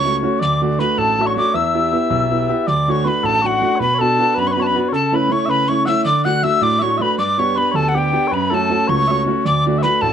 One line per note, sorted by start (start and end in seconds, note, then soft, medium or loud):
0.00 0.22 C#2 medium
0.00 0.39 C#5 medium
0.00 0.16 C#6 loud
0.05 0.21 A3 soft
0.05 0.21 C#4 soft
0.05 0.22 F#4 soft
0.23 0.37 A3 soft
0.23 0.37 C#4 medium
0.23 0.37 F#4 medium
0.39 0.78 D2 medium
0.39 0.79 D5 medium
0.39 0.61 D6 medium
0.62 0.77 A3 soft
0.62 0.78 D4 soft
0.62 0.78 F#4 medium
0.79 1.10 A3 soft
0.79 1.10 D4 soft
0.79 1.10 F#4 medium
0.79 0.98 B4 medium
0.79 1.00 B5 medium
0.98 1.35 A1 medium
0.98 1.21 A4 medium
0.98 1.28 A5 medium
1.19 1.35 A3 soft
1.19 1.35 D4 soft
1.19 1.36 F#4 medium
1.19 1.26 E5 medium
1.26 1.54 C#5 medium
1.26 1.36 C#6 medium
1.36 1.51 A3 soft
1.36 1.51 D4 soft
1.36 1.51 F#4 medium
1.36 1.57 D6 medium
1.54 1.91 E2 medium
1.54 2.67 E5 medium
1.54 2.50 E6 medium
1.74 1.90 B3 medium
1.74 1.91 E4 soft
1.74 1.91 G4 medium
1.92 2.23 B3 soft
1.92 2.23 E4 soft
1.92 2.23 G4 soft
2.10 2.48 B1 medium
2.31 2.47 B3 soft
2.31 2.47 E4 soft
2.31 2.48 G4 medium
2.49 2.63 B3 medium
2.49 2.63 E4 soft
2.49 2.64 G4 medium
2.67 3.04 D2 medium
2.67 2.89 D5 medium
2.67 2.93 D6 medium
2.88 3.04 A3 medium
2.88 3.04 D4 soft
2.88 3.04 F#4 medium
2.88 3.05 C#5 medium
2.88 3.09 C#6 medium
3.05 3.36 A3 soft
3.05 3.36 D4 soft
3.05 3.36 F#4 medium
3.05 3.23 B4 medium
3.05 3.27 B5 medium
3.23 3.61 A1 medium
3.23 3.42 A4 medium
3.23 3.48 A5 medium
3.42 3.60 A3 soft
3.42 3.60 D4 soft
3.42 3.76 F#4 medium
3.42 3.61 F#4 soft
3.46 3.81 F#5 medium
3.62 3.76 A3 medium
3.62 3.76 D4 soft
3.62 3.76 F#4 medium
3.76 3.95 B4 medium
3.76 3.80 C#5 medium
3.80 4.17 B2 medium
3.80 4.03 B5 medium
3.95 3.99 C#5 medium
3.99 4.17 B3 medium
3.99 4.17 D4 soft
3.99 4.18 F#4 medium
3.99 4.35 A4 medium
3.99 4.40 A5 medium
4.18 4.49 B3 soft
4.18 4.49 D4 soft
4.18 4.50 F#4 medium
4.35 4.74 F#2 medium
4.35 4.48 B4 medium
4.35 4.48 B5 medium
4.47 4.51 C#5 medium
4.47 4.54 C#6 medium
4.51 4.60 B4 medium
4.51 4.63 B5 medium
4.56 4.73 B3 soft
4.56 4.73 D4 soft
4.56 4.73 F#4 soft
4.56 4.64 C#5 medium
4.62 4.89 B4 medium
4.62 4.68 A5 medium
4.67 4.80 B5 medium
4.74 4.89 B3 medium
4.74 4.89 D4 medium
4.74 4.89 F#4 medium
4.89 5.30 C#3 medium
4.89 4.93 C#5 medium
4.93 5.16 A4 medium
4.93 5.15 A5 medium
5.12 5.28 A3 soft
5.12 5.28 C#4 medium
5.12 5.29 E4 medium
5.12 5.32 B4 medium
5.12 5.33 B5 medium
5.29 5.61 A3 medium
5.29 5.61 C#4 soft
5.29 5.61 E4 medium
5.29 5.46 C#5 medium
5.29 5.52 C#6 medium
5.46 5.86 C#3 medium
5.46 5.70 B4 medium
5.46 5.49 E5 medium
5.51 5.70 B5 medium
5.68 5.85 A3 soft
5.68 5.86 C#4 soft
5.68 5.86 E4 medium
5.68 5.86 C#5 medium
5.68 5.86 C#6 medium
5.86 6.02 A3 medium
5.86 6.02 C#4 medium
5.86 6.02 E4 medium
5.86 6.06 E5 medium
5.86 5.89 F#5 medium
5.86 6.04 E6 medium
6.05 6.43 D3 medium
6.05 6.25 D5 medium
6.05 6.24 D6 medium
6.24 6.42 A3 soft
6.24 6.43 D4 medium
6.24 6.43 F#4 medium
6.24 6.43 F#5 medium
6.24 6.45 F#6 medium
6.43 6.74 A3 soft
6.43 6.75 D4 soft
6.43 6.75 F#4 medium
6.43 6.62 E5 medium
6.43 6.65 E6 loud
6.61 6.99 A2 medium
6.61 6.79 D5 medium
6.61 6.83 D6 loud
6.79 6.98 A3 soft
6.79 6.98 D4 soft
6.79 6.99 F#4 medium
6.79 6.98 C#5 medium
6.79 6.83 E5 medium
6.79 7.03 C#6 medium
6.98 7.14 A3 soft
6.98 7.15 D4 soft
6.98 7.15 F#4 medium
6.98 7.19 B4 medium
6.98 7.02 E5 medium
7.02 7.18 B5 medium
7.18 7.56 G2 medium
7.18 7.38 D5 medium
7.18 7.41 D6 medium
7.38 7.55 B3 medium
7.38 7.55 D4 soft
7.38 7.56 G4 medium
7.38 7.56 C#5 medium
7.38 7.59 C#6 medium
7.56 7.88 B3 soft
7.56 7.88 D4 soft
7.56 7.88 G4 medium
7.56 7.72 B4 medium
7.56 7.77 B5 medium
7.72 8.12 D2 medium
7.72 7.95 A4 medium
7.72 7.75 C#5 medium
7.76 7.90 A5 medium
7.88 7.99 F#5 medium
7.94 8.11 B3 soft
7.94 8.12 D4 soft
7.94 8.28 G4 medium
7.94 8.12 G4 soft
7.98 8.35 G5 medium
8.13 8.28 B3 medium
8.13 8.28 D4 medium
8.13 8.28 G4 medium
8.28 8.69 F#2 medium
8.28 8.32 C#5 medium
8.32 8.50 B4 medium
8.32 8.56 B5 medium
8.50 8.69 A3 medium
8.50 8.69 C#4 soft
8.50 8.69 F#4 medium
8.50 8.88 A4 medium
8.50 8.91 A5 medium
8.70 9.01 A3 medium
8.70 9.01 C#4 soft
8.70 9.01 F#4 medium
8.88 9.26 C#2 medium
8.88 9.08 C#5 medium
8.88 9.22 C#6 medium
9.08 9.25 A3 soft
9.08 9.26 C#4 soft
9.08 9.26 F#4 medium
9.08 9.45 C#5 medium
9.08 9.11 E5 medium
9.26 9.41 A3 medium
9.26 9.41 C#4 soft
9.26 9.41 F#4 medium
9.45 9.82 D2 medium
9.45 9.78 D5 medium
9.45 9.64 D6 medium
9.66 9.83 A3 medium
9.66 9.83 D4 soft
9.66 9.84 F#4 medium
9.78 9.82 E5 medium
9.82 10.13 A3 medium
9.82 10.13 D4 soft
9.82 10.13 F#4 medium
9.82 10.02 B4 medium
9.82 10.03 B5 medium
10.01 10.13 A1 medium
10.01 10.13 A4 medium
10.01 10.13 A5 medium